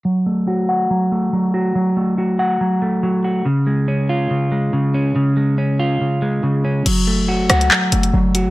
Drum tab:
CC |----------------|----------------|----------------|----------------|
HH |----------------|----------------|----------------|----------------|
CP |----------------|----------------|----------------|----------------|
SD |----------------|----------------|----------------|----------------|

CC |x---------------|
HH |x-----xx--xx--x-|
CP |--------x-------|
SD |------r---------|